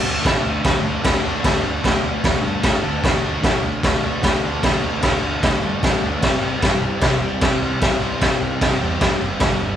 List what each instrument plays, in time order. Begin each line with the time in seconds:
Already playing: distorted electric guitar D3
0.02 picked electric bass D2, distorted electric guitar D4
0.06 distorted electric guitar A3
0.21 picked electric bass A2, distorted electric guitar D3 A3 D4, kick, crash
0.26 snare
0.43 picked electric bass D2
0.64 picked electric bass D2, kick, snare, crash
0.82 picked electric bass D2, distorted electric guitar D4
0.86 distorted electric guitar A3
1.01 picked electric bass D2, distorted electric guitar D3 A3, kick, snare, crash
1.06 distorted electric guitar D4
1.23 picked electric bass D2, distorted electric guitar A3 D4
1.42 picked electric bass D2, distorted electric guitar D3 A3 D4, kick, snare, crash
1.62 picked electric bass D2, distorted electric guitar D4
1.66 distorted electric guitar A3
1.83 picked electric bass D2, distorted electric guitar D3 A3 D4, kick, snare, crash
2.04 picked electric bass D2
2.24 picked electric bass D2, kick, snare, crash
2.42 picked electric bass G2, distorted electric guitar A3 D4
2.62 picked electric bass A2, distorted electric guitar D3 A3 D4, kick, snare, crash
2.82 picked electric bass D2, distorted electric guitar A3 D4
3.02 picked electric bass D2, distorted electric guitar D3 A3, kick, snare, crash
3.06 distorted electric guitar D4
3.21 picked electric bass D2, distorted electric guitar A3 D4
3.42 picked electric bass A2, distorted electric guitar D3 A3 D4, kick, snare, crash
3.63 picked electric bass D2
3.83 picked electric bass D2, kick, snare, crash
4.01 picked electric bass D2, distorted electric guitar A3 D4
4.21 picked electric bass D2, distorted electric guitar D3 A3 D4, kick, snare, crash
4.41 picked electric bass D2, distorted electric guitar A3 D4
4.62 picked electric bass D2, distorted electric guitar D3 A3 D4, kick, snare, crash
4.82 picked electric bass D2, distorted electric guitar D4
4.86 distorted electric guitar A3
5.00 picked electric bass D2, distorted electric guitar D3 A3 D4, kick, snare, crash
5.24 picked electric bass D2
5.43 picked electric bass D2, kick, snare, crash
5.60 picked electric bass G2, distorted electric guitar A3 D4
5.80 picked electric bass A2, distorted electric guitar D3 A3, kick, crash
5.84 distorted electric guitar D4, snare
6.01 picked electric bass D2, distorted electric guitar D4
6.05 distorted electric guitar A3
6.20 picked electric bass C2, distorted electric guitar C3 G3 C4, kick, snare, crash
6.40 picked electric bass C2, distorted electric guitar G3 C4
6.59 picked electric bass G2, distorted electric guitar C3 G3 C4, kick, snare, crash
6.82 picked electric bass C2
7.01 picked electric bass C2, kick, snare, crash
7.20 picked electric bass C2, distorted electric guitar C4
7.24 distorted electric guitar G3
7.40 picked electric bass C2, distorted electric guitar C3 G3 C4, kick, snare, crash
7.59 picked electric bass C2, distorted electric guitar G3 C4
7.79 picked electric bass C2, distorted electric guitar C3 G3, kick, snare, crash
7.83 distorted electric guitar C4
8.01 picked electric bass C2, distorted electric guitar G3 C4
8.19 picked electric bass C2, distorted electric guitar C3 G3 C4, kick, snare, crash
8.41 picked electric bass C2
8.61 picked electric bass C2, kick, snare, crash
8.79 picked electric bass E2, distorted electric guitar C4
8.83 distorted electric guitar G3
8.99 picked electric bass G2, distorted electric guitar C3 G3 C4, kick, snare, crash
9.18 picked electric bass F#1, distorted electric guitar G3 C4
9.37 distorted electric guitar G2 D3 G3, kick, snare, crash
9.41 picked electric bass G1
9.59 picked electric bass G1, distorted electric guitar D3 G3